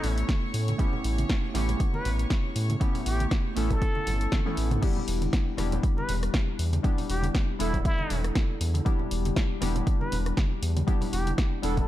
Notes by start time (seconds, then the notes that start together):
Already playing: A3 B3 C#4 E4 A4 C#5 C#6
0.04 A1, open hi-hat, low conga
0.18 closed hi-hat
0.28 kick, snare, closed hi-hat, high conga
0.54 A2, open hi-hat
0.68 closed hi-hat, high conga
0.78 A3 B3 C#4 E4 G4, kick, closed hi-hat
0.93 low conga
1.04 A1, open hi-hat
1.18 closed hi-hat, high conga
1.30 kick, snare, closed hi-hat
1.54 A1 A3 B3 C#4 E4 G4, snare, open hi-hat, high conga
1.69 closed hi-hat, low conga
1.80 kick, closed hi-hat
1.94 B4, high conga
2.05 A1, open hi-hat, low conga
2.19 closed hi-hat
2.30 kick, snare, closed hi-hat, high conga
2.56 A2, open hi-hat
2.70 closed hi-hat, high conga
2.80 A3 B3 C#4 E4 G4, kick, closed hi-hat
2.95 open hi-hat, low conga
3.06 A1 G4, open hi-hat
3.19 closed hi-hat, high conga
3.31 kick, snare, closed hi-hat
3.56 A1 A3 B3 C#4 E4 A4, open hi-hat
3.70 A4, kick, closed hi-hat, low conga
3.82 kick, closed hi-hat
3.95 high conga
4.07 G1, open hi-hat, low conga
4.21 closed hi-hat
4.32 kick, snare, closed hi-hat, high tom, high conga
4.46 A3 B3 C#4 E4 A4, high tom
4.57 A1, open hi-hat
4.71 closed hi-hat, mid tom, high conga
4.81 G3 B3 D4 E4 G4, kick, closed hi-hat, crash
4.96 low conga
5.08 E1, open hi-hat
5.22 closed hi-hat, high conga
5.33 kick, snare, closed hi-hat
5.57 E1 G3 B3 D4 E4 G4, cross-stick, snare, open hi-hat, high conga
5.72 closed hi-hat, low conga
5.83 kick, closed hi-hat
5.97 B4, high conga
6.09 E1, open hi-hat, low conga
6.23 cross-stick, closed hi-hat
6.34 kick, snare, closed hi-hat, high conga
6.59 E2, open hi-hat
6.73 closed hi-hat, high conga
6.83 G3 B3 D4 E4 G4, kick, closed hi-hat
6.98 open hi-hat, low conga
7.09 E1 G4, open hi-hat
7.23 closed hi-hat, high conga
7.35 kick, snare, closed hi-hat
7.59 E1 G3 B3 D4 E4 A4, open hi-hat
7.74 kick, closed hi-hat, low conga
7.85 E4, kick, closed hi-hat
7.99 high conga
8.10 E1, open hi-hat, low conga
8.24 cross-stick, closed hi-hat
8.35 kick, snare, closed hi-hat, high conga
8.61 E2, open hi-hat
8.74 closed hi-hat, high conga
8.85 G3 B3 D4 E4 G4, kick, closed hi-hat
8.99 low conga
9.11 E1, open hi-hat
9.25 closed hi-hat, high conga
9.36 kick, snare, closed hi-hat
9.61 E1 G3 B3 D4 E4 G4, cross-stick, snare, open hi-hat, high conga
9.75 closed hi-hat, low conga
9.87 kick, closed hi-hat
10.01 B4, high conga
10.12 E1, open hi-hat, low conga
10.26 cross-stick, closed hi-hat
10.37 kick, snare, closed hi-hat, high conga
10.62 E2, open hi-hat
10.77 closed hi-hat, high conga
10.87 G3 B3 D4 E4 G4, kick, closed hi-hat
11.01 open hi-hat, low conga
11.13 E1 G4, open hi-hat
11.27 closed hi-hat, high conga
11.38 kick, snare, closed hi-hat
11.62 E1 G3 B3 D4 E4 A4, open hi-hat
11.77 A4, kick, closed hi-hat, low conga